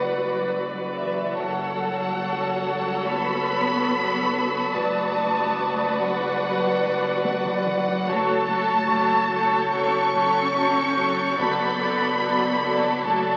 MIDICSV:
0, 0, Header, 1, 11, 480
1, 0, Start_track
1, 0, Tempo, 839161
1, 788, Time_signature, 4, 2, 24, 8
1, 3193, Tempo, 829876
1, 7696, End_track
2, 0, Start_track
2, 0, Title_t, "Violin section"
2, 0, Program_c, 0, 48
2, 0, Note_on_c, 0, 85, 31
2, 531, Note_off_c, 0, 85, 0
2, 782, Note_on_c, 0, 81, 37
2, 786, Note_on_c, 0, 88, 42
2, 1249, Note_on_c, 0, 85, 40
2, 2754, Note_off_c, 0, 88, 0
2, 2754, Note_on_c, 0, 87, 42
2, 3408, Note_off_c, 0, 87, 0
2, 4359, Note_off_c, 0, 85, 0
2, 4364, Note_off_c, 0, 81, 0
2, 4636, Note_on_c, 0, 85, 43
2, 5120, Note_on_c, 0, 91, 43
2, 7446, Note_off_c, 0, 91, 0
2, 7446, Note_on_c, 0, 92, 43
2, 7696, Note_off_c, 0, 85, 0
2, 7696, Note_off_c, 0, 92, 0
2, 7696, End_track
3, 0, Start_track
3, 0, Title_t, "Celesta"
3, 0, Program_c, 1, 8
3, 0, Control_c, 1, 64, 127
3, 0, Note_on_c, 1, 71, 30
3, 0, Note_on_c, 1, 83, 39
3, 0, Note_on_c, 1, 85, 37
3, 286, Note_off_c, 1, 85, 0
3, 799, Control_c, 1, 64, 0
3, 885, Control_c, 1, 64, 127
3, 1004, Note_off_c, 1, 83, 0
3, 1005, Note_off_c, 1, 71, 0
3, 2722, Control_c, 1, 64, 0
3, 2822, Control_c, 1, 64, 127
3, 4640, Control_c, 1, 64, 0
3, 4730, Control_c, 1, 64, 127
3, 5100, Note_on_c, 1, 85, 49
3, 5104, Note_on_c, 1, 73, 36
3, 6524, Note_off_c, 1, 85, 0
3, 6527, Note_off_c, 1, 73, 0
3, 6561, Control_c, 1, 64, 0
3, 6646, Control_c, 1, 64, 127
3, 7276, Note_on_c, 1, 69, 34
3, 7278, Note_on_c, 1, 81, 43
3, 7696, Note_off_c, 1, 69, 0
3, 7696, Note_off_c, 1, 81, 0
3, 7696, End_track
4, 0, Start_track
4, 0, Title_t, "Violin section"
4, 0, Program_c, 2, 48
4, 0, Note_on_c, 2, 78, 58
4, 314, Note_off_c, 2, 78, 0
4, 544, Note_on_c, 2, 76, 53
4, 768, Note_off_c, 2, 76, 0
4, 790, Note_on_c, 2, 78, 65
4, 1753, Note_on_c, 2, 83, 94
4, 1755, Note_off_c, 2, 78, 0
4, 2712, Note_off_c, 2, 83, 0
4, 2713, Note_on_c, 2, 81, 74
4, 3433, Note_off_c, 2, 81, 0
4, 3434, Note_on_c, 2, 78, 80
4, 4137, Note_off_c, 2, 78, 0
4, 4153, Note_on_c, 2, 78, 72
4, 4621, Note_off_c, 2, 78, 0
4, 4640, Note_on_c, 2, 81, 95
4, 5590, Note_on_c, 2, 85, 90
4, 5594, Note_off_c, 2, 81, 0
4, 6552, Note_off_c, 2, 85, 0
4, 6556, Note_on_c, 2, 83, 93
4, 7494, Note_off_c, 2, 83, 0
4, 7512, Note_on_c, 2, 81, 69
4, 7696, Note_off_c, 2, 81, 0
4, 7696, End_track
5, 0, Start_track
5, 0, Title_t, "Violin section"
5, 0, Program_c, 3, 48
5, 0, Note_on_c, 3, 71, 45
5, 0, Note_on_c, 3, 74, 45
5, 759, Note_off_c, 3, 71, 0
5, 759, Note_off_c, 3, 74, 0
5, 784, Note_on_c, 3, 69, 46
5, 786, Note_on_c, 3, 73, 50
5, 2687, Note_off_c, 3, 69, 0
5, 2688, Note_off_c, 3, 73, 0
5, 2716, Note_on_c, 3, 71, 53
5, 2721, Note_on_c, 3, 74, 57
5, 4608, Note_off_c, 3, 71, 0
5, 4610, Note_off_c, 3, 74, 0
5, 4635, Note_on_c, 3, 69, 53
5, 4636, Note_on_c, 3, 73, 51
5, 4862, Note_off_c, 3, 69, 0
5, 4865, Note_off_c, 3, 73, 0
5, 4869, Note_on_c, 3, 69, 51
5, 4872, Note_on_c, 3, 73, 53
5, 5098, Note_off_c, 3, 73, 0
5, 5102, Note_off_c, 3, 69, 0
5, 5105, Note_on_c, 3, 73, 48
5, 5109, Note_on_c, 3, 69, 44
5, 5342, Note_off_c, 3, 73, 0
5, 5343, Note_off_c, 3, 69, 0
5, 5357, Note_on_c, 3, 69, 53
5, 5361, Note_on_c, 3, 73, 48
5, 5586, Note_off_c, 3, 69, 0
5, 5590, Note_off_c, 3, 73, 0
5, 5593, Note_on_c, 3, 69, 54
5, 5597, Note_on_c, 3, 73, 49
5, 5824, Note_off_c, 3, 69, 0
5, 5828, Note_off_c, 3, 73, 0
5, 5831, Note_on_c, 3, 69, 52
5, 5835, Note_on_c, 3, 73, 46
5, 6067, Note_off_c, 3, 69, 0
5, 6069, Note_off_c, 3, 73, 0
5, 6074, Note_on_c, 3, 69, 53
5, 6077, Note_on_c, 3, 73, 55
5, 6308, Note_off_c, 3, 69, 0
5, 6310, Note_off_c, 3, 73, 0
5, 6314, Note_on_c, 3, 69, 47
5, 6316, Note_on_c, 3, 73, 47
5, 6537, Note_off_c, 3, 69, 0
5, 6541, Note_on_c, 3, 74, 51
5, 6544, Note_on_c, 3, 69, 51
5, 6548, Note_off_c, 3, 73, 0
5, 6778, Note_off_c, 3, 69, 0
5, 6780, Note_off_c, 3, 74, 0
5, 6785, Note_on_c, 3, 69, 51
5, 6787, Note_on_c, 3, 74, 47
5, 7015, Note_off_c, 3, 69, 0
5, 7015, Note_off_c, 3, 74, 0
5, 7022, Note_on_c, 3, 69, 41
5, 7022, Note_on_c, 3, 74, 42
5, 7261, Note_off_c, 3, 69, 0
5, 7261, Note_off_c, 3, 74, 0
5, 7273, Note_on_c, 3, 74, 45
5, 7276, Note_on_c, 3, 69, 49
5, 7504, Note_off_c, 3, 69, 0
5, 7505, Note_off_c, 3, 74, 0
5, 7511, Note_on_c, 3, 69, 47
5, 7512, Note_on_c, 3, 74, 44
5, 7696, Note_off_c, 3, 69, 0
5, 7696, Note_off_c, 3, 74, 0
5, 7696, End_track
6, 0, Start_track
6, 0, Title_t, "Viola section"
6, 0, Program_c, 4, 48
6, 0, Note_on_c, 4, 54, 44
6, 0, Note_on_c, 4, 66, 46
6, 764, Note_off_c, 4, 54, 0
6, 764, Note_off_c, 4, 66, 0
6, 781, Note_on_c, 4, 54, 50
6, 781, Note_on_c, 4, 66, 49
6, 2686, Note_off_c, 4, 54, 0
6, 2686, Note_off_c, 4, 66, 0
6, 2707, Note_on_c, 4, 66, 57
6, 2708, Note_on_c, 4, 54, 51
6, 4604, Note_off_c, 4, 54, 0
6, 4604, Note_off_c, 4, 66, 0
6, 4627, Note_on_c, 4, 66, 57
6, 4630, Note_on_c, 4, 54, 55
6, 4862, Note_off_c, 4, 66, 0
6, 4864, Note_off_c, 4, 54, 0
6, 4872, Note_on_c, 4, 54, 47
6, 4875, Note_on_c, 4, 66, 45
6, 5100, Note_off_c, 4, 54, 0
6, 5100, Note_off_c, 4, 66, 0
6, 5107, Note_on_c, 4, 54, 55
6, 5107, Note_on_c, 4, 66, 50
6, 5337, Note_off_c, 4, 66, 0
6, 5339, Note_off_c, 4, 54, 0
6, 5344, Note_on_c, 4, 66, 49
6, 5346, Note_on_c, 4, 54, 49
6, 5576, Note_off_c, 4, 66, 0
6, 5578, Note_off_c, 4, 54, 0
6, 5583, Note_on_c, 4, 66, 50
6, 5585, Note_on_c, 4, 54, 49
6, 5820, Note_off_c, 4, 54, 0
6, 5820, Note_off_c, 4, 66, 0
6, 5827, Note_on_c, 4, 54, 52
6, 5827, Note_on_c, 4, 66, 51
6, 6063, Note_off_c, 4, 54, 0
6, 6063, Note_off_c, 4, 66, 0
6, 6069, Note_on_c, 4, 54, 48
6, 6070, Note_on_c, 4, 66, 47
6, 6291, Note_off_c, 4, 54, 0
6, 6293, Note_off_c, 4, 66, 0
6, 6298, Note_on_c, 4, 54, 42
6, 6300, Note_on_c, 4, 66, 41
6, 6535, Note_off_c, 4, 66, 0
6, 6537, Note_off_c, 4, 54, 0
6, 6542, Note_on_c, 4, 66, 51
6, 6544, Note_on_c, 4, 54, 56
6, 6773, Note_off_c, 4, 54, 0
6, 6774, Note_off_c, 4, 66, 0
6, 6780, Note_on_c, 4, 54, 39
6, 6781, Note_on_c, 4, 66, 46
6, 7016, Note_off_c, 4, 54, 0
6, 7016, Note_off_c, 4, 66, 0
6, 7023, Note_on_c, 4, 54, 50
6, 7023, Note_on_c, 4, 66, 47
6, 7257, Note_off_c, 4, 54, 0
6, 7258, Note_off_c, 4, 66, 0
6, 7264, Note_on_c, 4, 54, 48
6, 7264, Note_on_c, 4, 66, 43
6, 7500, Note_off_c, 4, 54, 0
6, 7501, Note_off_c, 4, 66, 0
6, 7507, Note_on_c, 4, 54, 46
6, 7508, Note_on_c, 4, 66, 45
6, 7696, Note_off_c, 4, 54, 0
6, 7696, Note_off_c, 4, 66, 0
6, 7696, End_track
7, 0, Start_track
7, 0, Title_t, "Cello section"
7, 0, Program_c, 5, 48
7, 0, Note_on_c, 5, 54, 48
7, 313, Note_off_c, 5, 54, 0
7, 552, Note_on_c, 5, 52, 44
7, 772, Note_off_c, 5, 52, 0
7, 787, Note_on_c, 5, 54, 55
7, 1750, Note_on_c, 5, 59, 73
7, 1753, Note_off_c, 5, 54, 0
7, 2711, Note_off_c, 5, 59, 0
7, 2714, Note_on_c, 5, 57, 60
7, 3433, Note_off_c, 5, 57, 0
7, 3436, Note_on_c, 5, 54, 62
7, 4143, Note_off_c, 5, 54, 0
7, 4150, Note_on_c, 5, 54, 60
7, 4619, Note_off_c, 5, 54, 0
7, 4630, Note_on_c, 5, 57, 72
7, 5590, Note_off_c, 5, 57, 0
7, 5593, Note_on_c, 5, 61, 71
7, 6552, Note_on_c, 5, 59, 68
7, 6553, Note_off_c, 5, 61, 0
7, 7509, Note_on_c, 5, 57, 56
7, 7512, Note_off_c, 5, 59, 0
7, 7696, Note_off_c, 5, 57, 0
7, 7696, End_track
8, 0, Start_track
8, 0, Title_t, "Timpani"
8, 0, Program_c, 6, 47
8, 4626, Note_on_c, 6, 42, 56
8, 5323, Note_off_c, 6, 42, 0
8, 6549, Note_on_c, 6, 42, 58
8, 7246, Note_off_c, 6, 42, 0
8, 7696, End_track
9, 0, Start_track
9, 0, Title_t, "Double bass section"
9, 0, Program_c, 7, 48
9, 0, Note_on_c, 7, 30, 46
9, 764, Note_off_c, 7, 30, 0
9, 782, Note_on_c, 7, 30, 52
9, 2686, Note_off_c, 7, 30, 0
9, 2706, Note_on_c, 7, 30, 57
9, 4603, Note_off_c, 7, 30, 0
9, 4630, Note_on_c, 7, 30, 58
9, 4676, Note_off_c, 7, 30, 0
9, 4869, Note_on_c, 7, 30, 53
9, 4915, Note_off_c, 7, 30, 0
9, 5106, Note_on_c, 7, 30, 53
9, 5153, Note_off_c, 7, 30, 0
9, 5344, Note_on_c, 7, 30, 55
9, 5391, Note_off_c, 7, 30, 0
9, 5590, Note_on_c, 7, 30, 57
9, 5636, Note_off_c, 7, 30, 0
9, 5833, Note_on_c, 7, 30, 55
9, 5879, Note_off_c, 7, 30, 0
9, 6070, Note_on_c, 7, 30, 51
9, 6116, Note_off_c, 7, 30, 0
9, 6312, Note_on_c, 7, 30, 55
9, 6358, Note_off_c, 7, 30, 0
9, 6553, Note_on_c, 7, 30, 59
9, 6600, Note_off_c, 7, 30, 0
9, 6787, Note_on_c, 7, 30, 51
9, 6833, Note_off_c, 7, 30, 0
9, 7028, Note_on_c, 7, 30, 49
9, 7075, Note_off_c, 7, 30, 0
9, 7267, Note_on_c, 7, 30, 49
9, 7313, Note_off_c, 7, 30, 0
9, 7506, Note_on_c, 7, 30, 54
9, 7552, Note_off_c, 7, 30, 0
9, 7696, End_track
10, 0, Start_track
10, 0, Title_t, "Sub bass"
10, 0, Program_c, 8, 38
10, 0, Note_on_c, 8, 30, 66
10, 770, Note_off_c, 8, 30, 0
10, 786, Note_on_c, 8, 30, 68
10, 2689, Note_off_c, 8, 30, 0
10, 2716, Note_on_c, 8, 30, 71
10, 4608, Note_off_c, 8, 30, 0
10, 4634, Note_on_c, 8, 30, 71
10, 6530, Note_off_c, 8, 30, 0
10, 6558, Note_on_c, 8, 30, 71
10, 7696, Note_off_c, 8, 30, 0
10, 7696, End_track
11, 0, Start_track
11, 0, Title_t, "Taiko and cinematic ensemble drums"
11, 792, Note_on_c, 9, 41, 47
11, 849, Note_off_c, 9, 41, 0
11, 2714, Note_on_c, 9, 41, 76
11, 2771, Note_off_c, 9, 41, 0
11, 3195, Note_on_c, 9, 41, 66
11, 3253, Note_off_c, 9, 41, 0
11, 3553, Note_on_c, 9, 41, 66
11, 3611, Note_off_c, 9, 41, 0
11, 3918, Note_on_c, 9, 41, 62
11, 3976, Note_off_c, 9, 41, 0
11, 4156, Note_on_c, 9, 48, 74
11, 4214, Note_off_c, 9, 48, 0
11, 4275, Note_on_c, 9, 47, 77
11, 4333, Note_off_c, 9, 47, 0
11, 4396, Note_on_c, 9, 47, 76
11, 4454, Note_off_c, 9, 47, 0
11, 4517, Note_on_c, 9, 43, 75
11, 4575, Note_off_c, 9, 43, 0
11, 4635, Note_on_c, 9, 41, 72
11, 4693, Note_off_c, 9, 41, 0
11, 5111, Note_on_c, 9, 41, 70
11, 5169, Note_off_c, 9, 41, 0
11, 5475, Note_on_c, 9, 41, 65
11, 5533, Note_off_c, 9, 41, 0
11, 5838, Note_on_c, 9, 41, 61
11, 5896, Note_off_c, 9, 41, 0
11, 6198, Note_on_c, 9, 41, 65
11, 6256, Note_off_c, 9, 41, 0
11, 6553, Note_on_c, 9, 41, 82
11, 6611, Note_off_c, 9, 41, 0
11, 7031, Note_on_c, 9, 41, 66
11, 7089, Note_off_c, 9, 41, 0
11, 7390, Note_on_c, 9, 41, 60
11, 7447, Note_off_c, 9, 41, 0
11, 7696, End_track
0, 0, End_of_file